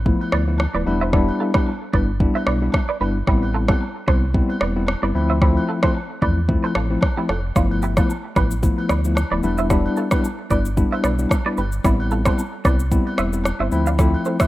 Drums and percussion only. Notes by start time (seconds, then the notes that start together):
0.06 kick
0.21 high agogo
0.32 cross-stick
0.58 cross-stick, high agogo, low woodblock
0.87 high agogo
1.13 kick, cross-stick
1.28 high agogo
1.54 kick, cross-stick, high agogo
1.66 low woodblock
1.93 kick, high agogo
2.20 kick
2.35 high agogo
2.47 cross-stick
2.72 kick, cross-stick, high agogo, low woodblock
3.02 high agogo
3.27 kick, cross-stick
3.43 high agogo
3.68 kick, cross-stick, high agogo
3.81 low woodblock
4.08 kick, cross-stick, high agogo
4.34 kick
4.50 high agogo
4.61 cross-stick
4.87 cross-stick, high agogo, low woodblock
5.16 high agogo
5.42 kick, cross-stick
5.57 high agogo
5.83 kick, cross-stick, high agogo
5.95 low woodblock
6.22 kick, high agogo
6.49 kick
6.64 high agogo
6.75 cross-stick
7.01 kick, cross-stick, high agogo, low woodblock
7.29 cross-stick, high agogo
7.56 kick, cross-stick, shaker
7.71 high agogo
7.82 shaker
7.97 kick, cross-stick, high agogo, shaker
8.09 low woodblock, shaker
8.36 kick, cross-stick, high agogo, shaker
8.51 shaker
8.63 kick, shaker
8.78 high agogo
8.89 cross-stick, shaker
9.04 shaker
9.15 cross-stick, high agogo, low woodblock, shaker
9.43 high agogo, shaker
9.58 shaker
9.70 kick, cross-stick, shaker
9.86 high agogo
9.97 shaker
10.11 kick, cross-stick, high agogo, shaker
10.24 low woodblock, shaker
10.50 kick, high agogo, shaker
10.65 shaker
10.77 kick, shaker
10.93 high agogo
11.04 cross-stick, shaker
11.19 shaker
11.29 kick, cross-stick, high agogo, low woodblock, shaker
11.57 high agogo, shaker
11.72 shaker
11.85 kick, cross-stick, shaker
12.00 high agogo
12.11 shaker
12.25 kick, cross-stick, high agogo, shaker
12.38 low woodblock, shaker
12.65 kick, cross-stick, high agogo, shaker
12.80 shaker
12.92 kick, shaker
13.07 high agogo
13.18 cross-stick, shaker
13.33 shaker
13.44 cross-stick, high agogo, low woodblock, shaker
13.72 high agogo, shaker
13.86 shaker
13.99 kick, cross-stick, shaker
14.14 high agogo
14.25 shaker
14.40 kick, cross-stick, high agogo, shaker